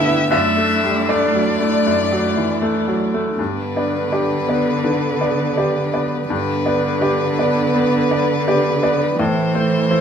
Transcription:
Already playing: grand piano B2 D3 A3 B3 D5 E5 F#5 G5, string section D4 G4 D5, cello E4, violin E5
0.06 grand piano B3
0.31 grand piano F#2 E5, string section A3 E4 D5, cello D4, violin E5
0.57 grand piano A3
0.83 grand piano G3
1.09 grand piano A3 D5, violin D5
1.35 grand piano F#3
1.60 grand piano A3
1.87 grand piano F#2
2.12 grand piano F#3
2.37 grand piano E3
2.62 grand piano A3
2.88 grand piano F#3
3.14 grand piano A3
3.39 grand piano G2, cello D3, string section B3 D4 D5, violin B4
3.76 grand piano B3 D5
4.12 grand piano G4 D5
4.48 grand piano B3 D5
4.84 grand piano D3
5.20 grand piano B3 D5
5.57 grand piano G4 D5
5.93 grand piano B3 D5
6.30 grand piano G2, cello D3, string section B3 D4 D5, violin B4
6.65 grand piano B3 D5
7.01 grand piano G4 D5
7.39 grand piano B3 D5
7.74 grand piano B3
8.11 grand piano B3 D5
8.48 grand piano G4 D5
8.83 grand piano B3 D5
9.19 grand piano A2, cello E3, string section A3 E4 C5, violin C5
9.55 grand piano A3 C5
9.91 grand piano E4 C5

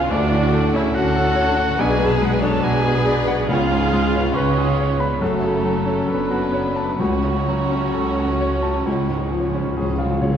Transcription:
Already playing: grand piano C#2 G#2 B3 C#4 G#4 B4 C#5 G#5, violin section B3 G#4, viola section F4
0.10 grand piano D2, double bass section D2, cello section D3, french horn section A3 D4, violin section D4 F#4, viola section D4, cor anglais D5
0.31 grand piano A2, violin section C#4
0.52 grand piano A3, violin section D4
0.74 grand piano C#4, violin section C#4 G#4, viola section E4, cor anglais E5
0.94 double bass section D2, cello section D3, violin section D4 A4, grand piano F#4, viola section F#4, cor anglais F#5
1.16 violin section C#4, grand piano A4
1.36 violin section D4, grand piano C#5
1.57 violin section C#4, grand piano F#5
1.78 grand piano B1, double bass section B1, cello section B2, french horn section B3 D4, violin section D4 B4, viola section G#4, cor anglais G#5
2.00 grand piano F#2, violin section B3
2.06 cor anglais A5
2.16 cor anglais G#5
2.21 grand piano G#3, violin section D4, cor anglais F#5
2.34 cor anglais G#5
2.42 violin section B3 C#5, grand piano D4, viola section A4, cor anglais A5
2.63 double bass section B1, cello section B2, violin section D4 B4, grand piano F#4, viola section G#4, cor anglais G#5
2.84 violin section B3, grand piano G#4
3.05 violin section D4, grand piano D5
3.25 violin section B3, grand piano F#5
3.48 double bass section C#2, grand piano C#2, cello section C#3, timpani C#3, french horn section B3 C#4, violin section C#4 G#4, viola section F4, cor anglais F5
3.70 grand piano G#2, violin section B3
3.92 grand piano G#3, violin section C#4
4.13 violin section B3, grand piano C#4
4.34 double bass section C#2, cello section C#3, violin section C#4 F4, viola section C#4, grand piano B4, cor anglais C#5
4.56 violin section B3, grand piano G#4
4.78 violin section C#4, grand piano C#5
4.99 violin section B3 D4, viola section B3, cor anglais B4, grand piano B5
5.21 double bass section F#1, cello section F#2, grand piano F#2, viola section A3, french horn section A3 F#4, violin section C#4, cor anglais A4
5.42 grand piano C#3, violin section A3
5.64 grand piano F#3, violin section C#4
5.85 violin section A3, grand piano C#4
6.08 double bass section F#1, cello section F#2, viola section B3, violin section C#4 D4, grand piano A4, cor anglais B4
6.30 violin section A3, grand piano F#4
6.53 violin section C#4, grand piano C#5
6.76 violin section A3, grand piano A5
6.99 cello section C#2, grand piano C#2, double bass section C#2, timpani C#3, french horn section A3 F#4, violin section C#4 F#4, viola section C#4, cor anglais C#5
7.23 grand piano C#3, violin section A3
7.47 grand piano F#3, violin section C#4
7.72 violin section A3, grand piano C#4
7.94 cello section C#2, double bass section C#2, violin section C#4, grand piano A4
8.17 violin section A3, grand piano F#4
8.40 violin section C#4, grand piano C#5
8.63 violin section A3, grand piano A5
8.86 grand piano C#2, cello section C#2, double bass section C#2, timpani C#3, french horn section G#3 F4, violin section C#4
8.95 timpani C#3
9.09 grand piano G#2, timpani C#3, violin section G#3
9.19 timpani C#3
9.27 timpani C#3, violin section C#4
9.31 timpani C#3, grand piano F3
9.43 timpani C#3
9.50 timpani C#3
9.54 violin section G#3, grand piano C#4
9.58 timpani C#3
9.66 timpani C#3
9.75 double bass section C#2, cello section C#2, timpani C#3, violin section C#4, grand piano G#4
9.82 timpani C#3
9.89 timpani C#3
9.97 timpani C#3, violin section G#3, grand piano F4
10.05 timpani C#3
10.13 timpani C#3
10.21 timpani C#3, violin section C#4, grand piano C#5
10.30 timpani C#3

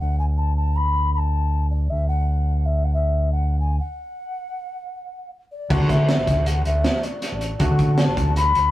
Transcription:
0.00 fingered electric bass D2, ocarina F#5
0.19 ocarina G#5
0.37 ocarina A5
0.56 ocarina A5
0.76 ocarina B5
1.13 ocarina B5
1.17 ocarina A5
1.70 ocarina D5
1.90 fingered electric bass D2, ocarina E5
2.08 ocarina F#5
2.65 ocarina E5
2.84 ocarina F#5
2.94 ocarina E5
3.32 ocarina F#5
3.60 ocarina G#5
3.80 ocarina F#5
5.52 ocarina D5
5.69 fingered electric bass D2, grand piano F#3 A3 D4 F#4, ocarina F#5, kick, crash
5.80 fingered electric bass D3
5.89 ocarina E5, kick, snare, closed hi-hat
6.09 snare, closed hi-hat
6.18 fingered electric bass A1
6.27 fingered electric bass D2, kick, snare, closed hi-hat
6.46 ocarina F#5, closed hi-hat
6.65 fingered electric bass D2, ocarina E5, closed hi-hat
6.84 snare, closed hi-hat
7.03 ocarina D5, closed hi-hat
7.22 snare, closed hi-hat
7.32 fingered electric bass A1
7.41 closed hi-hat
7.59 fingered electric bass D2, grand piano F#3 A3 D4 F#4, ocarina F#5, kick, closed hi-hat
7.70 fingered electric bass D3
7.79 kick, closed hi-hat
7.98 ocarina A5, snare, closed hi-hat
8.08 fingered electric bass A1
8.17 fingered electric bass D2, kick, closed hi-hat
8.36 ocarina B5, closed hi-hat
8.55 fingered electric bass D2, closed hi-hat

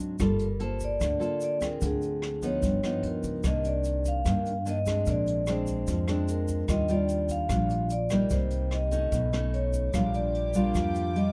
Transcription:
Already playing: nylon-string guitar G#2 F#3 C4 D4
0.19 upright bass G1, nylon-string guitar G3 A#3 F4 A4, vibraphone A4, kick, cross-stick, closed hi-hat, shaker
0.39 closed hi-hat, shaker
0.43 vibraphone A#4
0.60 nylon-string guitar A#3 F4 A4, vibraphone C5, closed hi-hat
0.80 kick, closed hi-hat, shaker
0.84 vibraphone D5
1.00 upright bass D2, nylon-string guitar D3, kick, cross-stick, closed hi-hat, shaker
1.20 nylon-string guitar A#3 F4 A4, closed hi-hat, shaker
1.41 vibraphone D5, closed hi-hat, shaker
1.61 nylon-string guitar C4 F4 G#4, kick, cross-stick, closed hi-hat, shaker
1.65 vibraphone A#4
1.81 upright bass D2, nylon-string guitar D3, kick, closed hi-hat, shaker
1.86 vibraphone G#4
2.02 closed hi-hat, shaker
2.22 cross-stick, closed hi-hat
2.42 nylon-string guitar F3 B3 D#4, vibraphone C#5, kick, closed hi-hat, shaker
2.62 upright bass G1, nylon-string guitar G2, kick, closed hi-hat, shaker
2.83 nylon-string guitar F3 B3 D#4, cross-stick, closed hi-hat, shaker
3.03 upright bass D#2, closed hi-hat
3.07 vibraphone A#4
3.23 upright bass C#2, kick, closed hi-hat, shaker
3.44 upright bass C2, nylon-string guitar C3 D#3 A#3 D4, vibraphone D#5, kick, cross-stick, closed hi-hat, shaker
3.64 vibraphone D5, closed hi-hat, shaker
3.84 closed hi-hat, shaker
4.05 vibraphone F5, kick, closed hi-hat, shaker
4.25 upright bass G2, nylon-string guitar G2 D#3 A#3 D4, kick, cross-stick, closed hi-hat, shaker
4.46 closed hi-hat, shaker
4.65 nylon-string guitar D#3 A#3 D4, closed hi-hat, shaker
4.69 vibraphone D#5
4.86 nylon-string guitar G#3 C4 D4, kick, cross-stick, closed hi-hat, shaker
5.06 upright bass A#1, nylon-string guitar A#2, vibraphone D5, kick, closed hi-hat, shaker
5.27 closed hi-hat, shaker
5.47 nylon-string guitar G#3 C4 D4, vibraphone C5, cross-stick, closed hi-hat, shaker
5.67 kick, closed hi-hat, shaker
5.87 upright bass F2, nylon-string guitar F3, kick, closed hi-hat, shaker
6.08 nylon-string guitar G#3 C4 D4, cross-stick, closed hi-hat, shaker
6.28 vibraphone A#4, closed hi-hat, shaker
6.48 kick, closed hi-hat, shaker
6.68 upright bass D#2, nylon-string guitar D#3 G3 D4 F4, vibraphone D#5, kick, cross-stick, closed hi-hat, shaker
6.88 nylon-string guitar G3 D4 F4, vibraphone D5, closed hi-hat, shaker
7.08 closed hi-hat, shaker
7.29 vibraphone F5, kick, closed hi-hat, shaker
7.49 upright bass A#1, nylon-string guitar A#2 G3 D4 F4, kick, cross-stick, closed hi-hat, shaker
7.70 closed hi-hat, shaker
7.90 vibraphone D5, closed hi-hat, shaker
8.10 nylon-string guitar G3 A#3 D#4, kick, cross-stick, closed hi-hat, shaker
8.30 upright bass C2, nylon-string guitar C3, vibraphone C5, kick, closed hi-hat, shaker
8.50 closed hi-hat, shaker
8.71 vibraphone D#5, cross-stick, closed hi-hat
8.91 nylon-string guitar A3 C#4 D#4, kick, closed hi-hat, shaker
9.12 upright bass B1, nylon-string guitar B2, kick, closed hi-hat, shaker
9.33 nylon-string guitar A3 C#4 D#4, cross-stick, closed hi-hat, shaker
9.54 vibraphone C#5, closed hi-hat
9.73 kick, closed hi-hat, shaker
9.91 upright bass A#1, nylon-string guitar A#2 G3 D4 F4, string section A#3 F4 G4 D6, vibraphone F5, kick, cross-stick, closed hi-hat, shaker
10.14 vibraphone D5, closed hi-hat, shaker
10.35 closed hi-hat
10.54 nylon-string guitar G3 D4 F4, vibraphone F5, kick, closed hi-hat, shaker
10.75 upright bass F2, nylon-string guitar F3, kick, cross-stick, closed hi-hat, shaker
10.95 closed hi-hat, shaker
11.15 nylon-string guitar G3 F4, vibraphone D#5, closed hi-hat

